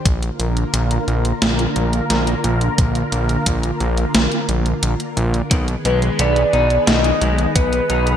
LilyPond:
<<
  \new Staff \with { instrumentName = "Soft synth lead" } { \time 4/4 \key bes \mixolydian \tempo 4 = 88 r1 | r1 | r8 ces''8 d''4 ees''4 ces''4 | }
  \new Staff \with { instrumentName = "Analog synth pad" } { \time 4/4 \key bes \mixolydian <d bes f' bes'>1~ | <d bes f' bes'>1 | <ees ces' aes' ces''>1 | }
  \new Staff \with { instrumentName = "Clean electric guitar" } { \time 4/4 \key bes \mixolydian r1 | r1 | ees8 aes8 ces'8 ees'8 ees8 aes8 ces'8 ees'8 | }
  \new Staff \with { instrumentName = "Analog synth bass" } { \clef bass \time 4/4 \key bes \mixolydian bes,,8 bes,,8 bes,,8 bes,,8 bes,,8 bes,,8 bes,,8 bes,,8 | bes,,8 bes,,8 bes,,8 bes,,8 bes,,8 bes,,8 bes,,8 bes,,8 | ces,8 ces,8 ces,8 ces,8 ces,8 ces,8 ces,8 ces,8 | }
  \new DrumStaff \with { instrumentName = "Drums" } \drummode { \time 4/4 <hh bd>16 hh16 hh16 hh16 hh16 hh16 hh16 hh16 <hh sn>16 hh16 hh16 hh16 <hh sn>16 hh16 hh16 hh16 | <hh bd>16 hh16 hh16 hh16 <hh bd>16 hh16 hh16 hh16 <hh sn>16 hh16 hh16 hh16 hh16 hh16 hh16 hh16 | <hh bd>16 hh16 hh16 hh16 hh16 hh16 hh16 hh16 <hh sn>16 hh16 hh16 hh16 <hh bd>16 hh16 hh16 hh16 | }
>>